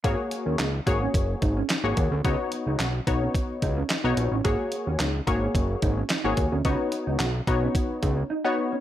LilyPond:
<<
  \new Staff \with { instrumentName = "Analog polysynth" } { \time 4/4 \key gis \minor \tempo 4 = 109 <ais fis' gis' cis''>4~ <ais fis' gis' cis''>16 r16 <ais fis' gis' cis''>4~ <ais fis' gis' cis''>16 r8 <ais fis' gis' cis''>8 r16 | <b dis' fis' cis''>4~ <b dis' fis' cis''>16 r16 <b dis' fis' cis''>4~ <b dis' fis' cis''>16 r8 <b dis' fis' cis''>8 r16 | <ais fis' gis' cis''>4~ <ais fis' gis' cis''>16 r16 <ais fis' gis' cis''>4~ <ais fis' gis' cis''>16 r8 <ais fis' gis' cis''>8 r16 | <b dis' fis' cis''>4~ <b dis' fis' cis''>16 r16 <b dis' fis' cis''>4~ <b dis' fis' cis''>16 r8 <b dis' fis' cis''>8 r16 | }
  \new Staff \with { instrumentName = "Clean electric guitar" } { \time 4/4 \key gis \minor gis16 r8 cis'16 dis'16 r8 cis'16 r8 dis'16 cis'16 dis'16 r8 cis'16 | cis'16 r8 dis'16 fis'16 r8 cis'16 r8 dis'16 cis'16 dis'16 r8 cis'16 | gis16 r8 cis'16 dis'16 r8 cis'16 r8 dis'16 cis'16 dis'16 r8 cis'16 | cis'16 r8 dis'16 fis'16 r8 cis'16 r8 dis'16 cis'16 dis'16 r8 cis'16 | }
  \new Staff \with { instrumentName = "Analog synth bass" } { \clef bass \time 4/4 \key gis \minor gis,,16 r8 dis,16 cis,8 gis,,8 fis,,8 gis,,8 r16 gis,,16 dis,16 d,16 | cis,16 r8 cis,16 b,,8 b,,8 r8 cis,8 r16 b,,16 ais,,16 a,,16 | gis,,16 r8 dis,16 cis,8 gis,,8 fis,,8 gis,,8 r16 gis,,16 dis,16 d,16 | cis,16 r8 cis,16 b,,8 b,,8 r8 cis,8 r4 | }
  \new DrumStaff \with { instrumentName = "Drums" } \drummode { \time 4/4 <hh bd>8 hh8 <hc hh sn>8 <hh bd>8 <hh bd>8 <hh bd>8 <hc hh sn>8 <hh bd>8 | <hh bd>8 hh8 <hc hh sn>8 <hh bd>8 <hh bd>8 <hh bd>8 <hc hh sn>8 hh8 | <hh bd>8 hh8 <hc hh sn>8 <hh bd>8 <hh bd>8 <hh bd>8 <hc hh sn>8 <hh bd>8 | <hh bd>8 hh8 <hc hh sn>8 <hh bd>8 <hh bd>8 <hh bd>8 r4 | }
>>